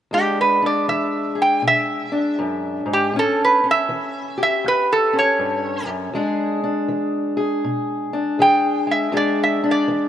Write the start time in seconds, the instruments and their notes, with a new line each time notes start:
0.11 steel-string acoustic guitar E2 G#3 D4, resonator guitar played with a steel bar G4
0.41 resonator guitar played with a steel bar B4
0.62 steel-string acoustic guitar D4
0.66 resonator guitar played with a steel bar D5
0.88 steel-string acoustic guitar E3, resonator guitar played with a steel bar E5
1.35 steel-string acoustic guitar G#4
1.42 resonator guitar played with a steel bar G5
1.62 steel-string acoustic guitar B2
1.67 resonator guitar played with a steel bar E5
2.12 steel-string acoustic guitar D4
2.39 steel-string acoustic guitar F#2
2.86 steel-string acoustic guitar G#2
2.93 resonator guitar played with a steel bar G4
3.13 steel-string acoustic guitar A2 C#4
3.19 resonator guitar played with a steel bar A4
3.45 resonator guitar played with a steel bar B4
3.64 steel-string acoustic guitar C#4
3.71 resonator guitar played with a steel bar E5
3.89 steel-string acoustic guitar E3
4.38 steel-string acoustic guitar G4
4.43 resonator guitar played with a steel bar E5
4.64 steel-string acoustic guitar E2, resonator guitar played with a steel bar B4
4.93 resonator guitar played with a steel bar A4
5.13 steel-string acoustic guitar C#4
5.19 resonator guitar played with a steel bar C#5
5.39 steel-string acoustic guitar G2
5.86 steel-string acoustic guitar F#2
6.13 steel-string acoustic guitar E2 G#3 D4 G#4
6.64 steel-string acoustic guitar D4
6.88 steel-string acoustic guitar E3
7.37 steel-string acoustic guitar G#4
7.64 steel-string acoustic guitar B2
8.13 steel-string acoustic guitar D4
8.39 steel-string acoustic guitar E3 G#4, resonator guitar played with a steel bar G5
8.87 steel-string acoustic guitar G#3
8.91 resonator guitar played with a steel bar E5
9.12 steel-string acoustic guitar E2 G#3 D4 G#4
9.17 resonator guitar played with a steel bar D5
9.44 resonator guitar played with a steel bar E5
9.64 steel-string acoustic guitar D4
9.71 resonator guitar played with a steel bar D5
9.88 steel-string acoustic guitar E3